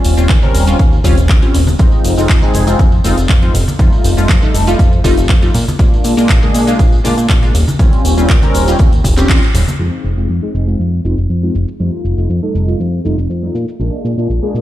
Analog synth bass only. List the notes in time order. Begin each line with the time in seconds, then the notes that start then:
0.05 D#1
0.18 D#1
0.29 D#2
0.55 D#1
0.79 D#2
1.04 D#1
1.18 D#1
1.29 D#2
1.54 D#1
1.79 F2
2.04 F1
2.17 F1
2.29 F2
2.55 F1
2.79 F2
3.05 F1
3.17 F1
3.29 F2
3.54 F1
3.79 F2
4.04 F1
4.17 F1
4.29 F2
4.54 F1
4.79 F2
5.04 F1
5.17 F1
5.29 F2
5.54 A#2
5.79 A#1
6.04 A#2
6.17 A#2
6.29 A#1
6.55 A#2
6.79 A#1
7.04 A#2
7.17 A#2
7.29 A#1
7.54 D#1
7.79 D#2
8.04 D#1
8.17 D#1
8.29 D#2
8.54 D#1
8.79 D#2
9.04 D#1
9.17 D#1
9.29 D#2
9.54 D#1
9.79 F2
10.04 F1
10.17 F1
10.29 F2
10.55 F1
10.80 F2
11.05 F1
11.17 F1
11.30 F2
11.55 F1
11.80 F2
12.05 F1
12.17 F1
12.30 F2
12.55 F1
12.80 F2
13.05 F1
13.18 F1
13.30 F2
13.55 A#2
13.80 A#1
14.05 A#2
14.17 A#2
14.29 A#1
14.55 A#2